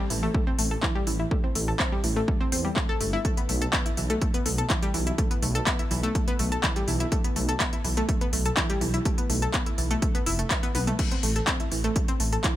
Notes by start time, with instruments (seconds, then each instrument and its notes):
0.10 detuned saw bass A1, synth pluck E3, open hi-hat
0.23 synth pluck A3
0.34 synth pluck A3, kick
0.47 synth pluck C4
0.59 detuned saw bass A1, synth pluck A3, open hi-hat
0.71 synth pluck A4
0.83 synth pluck E3, kick, clap
0.95 synth pluck G3
1.07 detuned saw bass A1, synth pluck E3, open hi-hat
1.20 synth pluck E4
1.31 synth pluck A3, kick
1.44 synth pluck C4
1.55 detuned saw bass A1, synth pluck A3, open hi-hat
1.68 synth pluck A4
1.79 synth pluck C4, kick, clap
1.92 synth pluck G3
2.04 detuned saw bass A1, synth pluck E3, open hi-hat
2.16 synth pluck A3
2.28 synth pluck A3, kick
2.41 synth pluck C4
2.52 detuned saw bass E2, synth pluck C4, open hi-hat
2.65 synth pluck G3
2.76 synth pluck A3, kick, clap
2.89 synth pluck A4
3.00 detuned saw bass G1, synth pluck A3, open hi-hat
3.13 synth pluck E4
3.25 synth pluck A3, kick, closed hi-hat
3.37 synth pluck B3, closed hi-hat
3.49 detuned saw bass B1, synth pluck A3, open hi-hat
3.62 synth pluck A4, closed hi-hat
3.73 synth pluck B3, kick, clap, closed hi-hat
3.86 synth pluck E4, closed hi-hat
3.97 detuned saw bass B1, synth pluck E3, open hi-hat
4.10 synth pluck A3, closed hi-hat
4.22 synth pluck A3, kick, closed hi-hat
4.34 synth pluck B3, closed hi-hat
4.46 detuned saw bass B1, synth pluck A3, open hi-hat
4.58 synth pluck A4, closed hi-hat
4.70 synth pluck E3, kick, clap, closed hi-hat
4.83 synth pluck G3, closed hi-hat
4.94 detuned saw bass B1, synth pluck E3, open hi-hat
5.07 synth pluck E4, closed hi-hat
5.18 synth pluck A3, kick, closed hi-hat
5.31 synth pluck B3, closed hi-hat
5.42 detuned saw bass B1, synth pluck A3, open hi-hat
5.55 synth pluck A4, closed hi-hat
5.67 synth pluck B3, kick, clap, closed hi-hat
5.79 synth pluck E4, closed hi-hat
5.91 detuned saw bass B1, synth pluck E3, open hi-hat
6.03 synth pluck A3, closed hi-hat
6.15 synth pluck A3, kick, closed hi-hat
6.28 synth pluck B3, closed hi-hat
6.39 detuned saw bass B1, synth pluck A3, open hi-hat
6.52 synth pluck A4, closed hi-hat
6.63 synth pluck E3, kick, clap, closed hi-hat
6.76 synth pluck G3, closed hi-hat
6.88 detuned saw bass B1, synth pluck E3, open hi-hat
7.00 synth pluck E4, closed hi-hat
7.12 synth pluck A3, kick, closed hi-hat
7.24 synth pluck B3, closed hi-hat
7.36 detuned saw bass B1, synth pluck A3, open hi-hat
7.49 synth pluck A4, closed hi-hat
7.60 synth pluck B3, kick, clap, closed hi-hat
7.73 synth pluck E4, closed hi-hat
7.84 detuned saw bass B1, synth pluck E3, open hi-hat
7.97 synth pluck A3, closed hi-hat
8.09 synth pluck A3, kick, closed hi-hat
8.21 synth pluck B3, closed hi-hat
8.33 detuned saw bass B1, synth pluck A3, open hi-hat
8.45 synth pluck A4, closed hi-hat
8.57 synth pluck E3, kick, clap, closed hi-hat
8.70 synth pluck G3, closed hi-hat
8.81 detuned saw bass B1, synth pluck E3, open hi-hat
8.94 synth pluck E4, closed hi-hat
9.05 synth pluck A3, kick, closed hi-hat
9.18 synth pluck B3, closed hi-hat
9.30 detuned saw bass B1, synth pluck A3, open hi-hat
9.42 synth pluck A4, closed hi-hat
9.54 synth pluck B3, kick, clap, closed hi-hat
9.66 synth pluck E4, closed hi-hat
9.78 detuned saw bass B1, synth pluck E3, open hi-hat
9.91 synth pluck A3, closed hi-hat
10.02 synth pluck A3, kick, closed hi-hat
10.15 synth pluck B3, closed hi-hat
10.26 detuned saw bass F1, synth pluck E4, open hi-hat
10.39 synth pluck A3, closed hi-hat
10.51 synth pluck B4, kick, clap, closed hi-hat
10.63 synth pluck B3, closed hi-hat
10.75 detuned saw bass B1, synth pluck B3, open hi-hat, high tom
10.87 synth pluck A3, closed hi-hat, mid tom
10.99 synth pluck A3, kick, closed hi-hat, crash
11.12 synth pluck C4, closed hi-hat
11.23 detuned saw bass A1, synth pluck A3, open hi-hat
11.36 synth pluck A4, closed hi-hat
11.47 synth pluck C4, kick, clap, closed hi-hat
11.60 synth pluck E4, closed hi-hat
11.72 detuned saw bass A1, synth pluck E3, open hi-hat
11.84 synth pluck A3, closed hi-hat
11.96 synth pluck A3, kick, closed hi-hat
12.08 synth pluck C4, closed hi-hat
12.20 detuned saw bass A1, synth pluck A3, open hi-hat
12.32 synth pluck A4, closed hi-hat
12.44 synth pluck E3, kick, clap, closed hi-hat